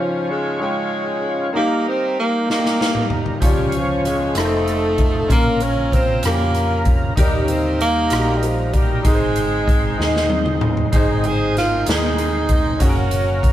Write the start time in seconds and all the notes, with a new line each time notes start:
Already playing: C#3 F3 C#4 F4 C#5
0.00 F3 F4
0.30 G#3 G#4
0.59 G#3 C#4 F4 G#4 G5
1.53 D#3 F#3 A#3 D#4 G4 A#4
1.57 G3 D#4 G4 A#4
1.88 C4 C5
2.20 A#3 A#4
2.46 A#3 D#4 F4, snare
2.51 A#3 D#4 G4 A#4
2.56 G4
2.66 snare
2.81 snare
2.95 mid tom
3.10 floor tom
3.26 floor tom
3.40 C#2 C#3 F3 C#4 F4 C#5, kick, closed hi-hat
3.45 G3 C#4 G4
3.72 closed hi-hat
3.76 F3 F4
4.05 G#3 G#4, cross-stick, closed hi-hat
4.35 F1 F3 A3 C4 D#4 F4 A4 A#4, cross-stick, closed hi-hat
4.39 D#4
4.44 C5
4.68 closed hi-hat
4.98 kick, closed hi-hat
5.28 A#1 A#2 C#3 F3 A#3 C#4 F4 A#4, kick, closed hi-hat
5.32 A#3 F4 A#4
5.60 C#4 C#5, closed hi-hat
5.92 C4 C5, kick, closed hi-hat
6.22 F2 A#3 C#4 F4 G4 A#4, cross-stick, closed hi-hat
6.55 cross-stick, closed hi-hat
6.85 kick, closed hi-hat
7.16 D#2 D#3 G3 A#3 D#4 G4 A#4, kick, closed hi-hat
7.43 C#4
7.48 C4 C5, closed hi-hat
7.81 A#3 D#4 G4 A#4, closed hi-hat
8.09 A#1 D#4 F#4 A#4, cross-stick, closed hi-hat
8.17 G4
8.37 G3
8.43 F3 F4, closed hi-hat
8.73 G3 G4, kick, closed hi-hat
9.03 G#1 G#2 G#3 C4 D#4 G#4 A#4 C5, kick, closed hi-hat
9.07 C4 D#4 G#4
9.14 C5
9.36 closed hi-hat
9.68 kick, closed hi-hat
9.98 D#2 D#4 G#4 D#5, snare
10.16 snare
10.30 high tom
10.46 mid tom
10.61 mid tom
10.77 floor tom
10.92 G#1 G#2 G#3 C4 D#4 G#4 C5, kick, closed hi-hat
11.24 G#4 C5, closed hi-hat
11.57 F4 A#4, snare, closed hi-hat
11.86 D#2 C4 D#4 G#4 A#4, snare, closed hi-hat
12.18 closed hi-hat
12.49 kick, closed hi-hat
12.79 F#1 F#3 A#3 C#4 F#4 G#4 A#4, kick, closed hi-hat
12.89 A#4
13.11 closed hi-hat
13.43 kick, closed hi-hat